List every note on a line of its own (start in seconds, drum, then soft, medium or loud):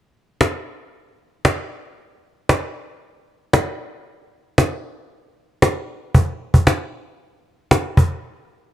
0.41 cajon slap loud
1.45 cajon slap loud
2.49 cajon slap loud
3.53 cajon slap loud
4.58 cajon slap loud
5.62 cajon slap loud
6.15 cajon bass loud
6.54 cajon bass medium
6.67 cajon slap loud
7.71 cajon slap loud
7.97 cajon bass loud